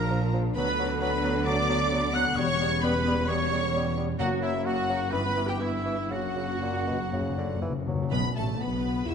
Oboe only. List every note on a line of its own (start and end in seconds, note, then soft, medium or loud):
0.00 0.33 A#4 medium
0.56 0.98 B4 medium
1.01 1.44 B4 loud
1.45 2.13 D5 loud
2.13 2.24 F#5 loud
2.38 2.85 C#5 loud
2.84 3.30 B4 loud
3.28 3.97 C#5 medium
4.19 4.41 F#4 loud
4.43 4.66 E4 medium
4.66 5.12 F#4 medium
5.13 5.51 B4 medium
5.49 5.61 G4 medium
5.61 6.13 E4 medium
6.11 7.62 F#4 medium